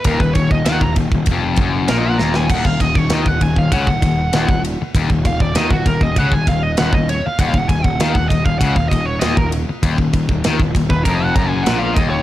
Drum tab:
CC |----------------|x---------------|----------------|----------------|
RD |x-x-x-x-x-x-x---|--x-x-x-x-x-x-x-|x-x-x-x-x-x-x-x-|x-x-x-x-x-x-x-x-|
SD |----o-------o-oo|----o-------o---|----o-------o---|----o-------o---|
BD |oooo-oooo-o-----|oooo-oooooo--o--|oooo-oooooo--o--|oooo-oooooo--o--|

CC |----------------|
RD |x-x-x-x-x-x-x-x-|
SD |----o-------o---|
BD |oooo-oooo-o---o-|